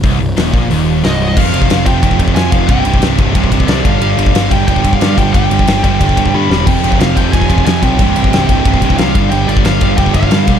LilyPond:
<<
  \new Staff \with { instrumentName = "Lead electric guitar" } { \time 4/4 \key c \minor \tempo 4 = 181 r2. ees''8 ees''8 | f''4. g''4 r8 aes''8 f''8 | g''4 r2 d''8 f''8~ | f''4. g''8 g''8. f''8. g''8 |
g''4. g''4. b''4 | g''4 f''8 g''8 aes''4 aes''8 g''8~ | g''4. g''4. f''4 | g''8 d''8 f''4 g''8 f''4. | }
  \new Staff \with { instrumentName = "Distorted electric guitar" } { \clef bass \time 4/4 \key c \minor c,8 c,8 ees,8 bes,8 ees,4 c,4 | <f, c f>8 <f, c f>8 <f, c f>8 <f, c f>8 <f, c f>8 <f, c f>8 <f, c f>8 <f, c f>8 | <c, g, c>8 <c, g, c>8 <c, g, c>8 <c, g, c>8 <c, g, c>8 <c, g, c>8 <c, g, c>8 <g, d g>8 | <g, d g>8 <g, d g>8 <g, d g>8 <g, d g>8 <g, d g>8 <g, d g>8 <g, d g>8 <g, d g>8 |
<g, d g>8 <g, d g>8 <g, d g>8 <g, d g>8 <g, d g>8 <g, d g>8 <g, d g>8 <g, d g>8 | <f, c f>8 <f, c f>8 <f, c f>8 <f, c f>8 <f, c f>8 <f, c f>8 <f, c f>8 <f, c f>8 | <c, g, c>8 <c, g, c>8 <c, g, c>8 <c, g, c>8 <c, g, c>8 <c, g, c>8 <c, g, c>8 <g, d g>8 | <g, d g>8 <g, d g>8 <g, d g>8 <g, d g>8 <g, d g>8 <g, d g>8 <g, d g>8 <g, d g>8 | }
  \new Staff \with { instrumentName = "Distorted electric guitar" } { \clef bass \time 4/4 \key c \minor c,8 c,8 ees,8 bes,8 ees,4 c,4 | <f, c f>8 <f, c f>8 <f, c f>8 <f, c f>8 <f, c f>8 <f, c f>8 <f, c f>8 <f, c f>8 | <c, g, c>8 <c, g, c>8 <c, g, c>8 <c, g, c>8 <c, g, c>8 <c, g, c>8 <c, g, c>8 <g, d g>8 | <g, d g>8 <g, d g>8 <g, d g>8 <g, d g>8 <g, d g>8 <g, d g>8 <g, d g>8 <g, d g>8 |
<g, d g>8 <g, d g>8 <g, d g>8 <g, d g>8 <g, d g>8 <g, d g>8 <g, d g>8 <g, d g>8 | <f, c f>8 <f, c f>8 <f, c f>8 <f, c f>8 <f, c f>8 <f, c f>8 <f, c f>8 <f, c f>8 | <c, g, c>8 <c, g, c>8 <c, g, c>8 <c, g, c>8 <c, g, c>8 <c, g, c>8 <c, g, c>8 <g, d g>8 | <g, d g>8 <g, d g>8 <g, d g>8 <g, d g>8 <g, d g>8 <g, d g>8 <g, d g>8 <g, d g>8 | }
  \new Staff \with { instrumentName = "Distorted electric guitar" } { \clef bass \time 4/4 \key c \minor c,8 c,8 ees,8 bes,8 ees,4 c,4 | r1 | r1 | r1 |
r1 | <f, c f>2.~ <f, c f>8 <f, c f>8 | <c, g, c>2.~ <c, g, c>8 <g, d g>8~ | <g, d g>2. <g, d g>8 r8 | }
  \new Staff \with { instrumentName = "Picked electric bass" } { \clef bass \time 4/4 \key c \minor c,,8 c,,8 ees,,8 bes,,8 ees,,4 c,,4 | f,,8 f,,8 f,,8 f,,8 f,,8 f,,8 f,8 f,,8 | c,,8 c,,8 c,,8 c,,8 c,,8 c,,8 c,8 g,,8 | g,,8 g,,8 g,,8 g,,8 g,,8 g,,8 g,8 g,,8 |
g,,8 g,,8 g,,8 g,,8 g,,8 g,,8 g,8 e,,8 | f,,8 f,,8 f,,8 f,,8 f,,8 f,,8 f,8 b,,8 | c,,8 c,,8 c,,8 c,,8 c,,8 c,,8 c,8 g,,8 | g,,8 g,,8 g,,8 g,,8 g,,8 g,,8 g,8 b,,8 | }
  \new DrumStaff \with { instrumentName = "Drums" } \drummode { \time 4/4 <hho bd>4 <hho sn>8 bd8 hho4 <hho sn>4 | <cymc bd>8 cymr16 bd16 <cymr sn>8 <bd cymr>8 <bd cymr>16 bd16 <bd cymr>16 bd16 <cymr sn>8 <bd cymr>8 | <bd cymr>8 cymr16 bd16 <cymr sn>8 <bd cymr>8 <bd cymr>16 bd16 <bd cymr>16 bd16 <cymr sn>8 <bd cymr>8 | cymr8 cymr16 bd16 <cymr sn>8 <bd cymr>8 <bd cymr>16 bd16 <bd cymr>16 bd16 <cymr sn>8 <bd cymr>8 |
<bd cymr>8 cymr16 bd16 <cymr sn>8 <bd cymr>8 <bd cymr>16 bd16 <bd cymr>16 bd16 tommh8 sn8 | <cymc bd>8 cymr16 bd16 <cymr sn>8 <bd cymr>8 <bd cymr>16 bd16 <bd cymr>16 bd16 <cymr sn>8 <bd cymr>8 | <bd cymr>8 cymr16 bd16 <cymr sn>8 <bd cymr>8 <bd cymr>16 bd16 <bd cymr>16 bd16 <cymr sn>8 <bd cymr>8 | cymr8 cymr16 bd16 <cymr sn>8 <bd cymr>8 <bd cymr>16 bd16 <bd cymr>16 bd16 <cymr sn>8 <bd cymr>8 | }
>>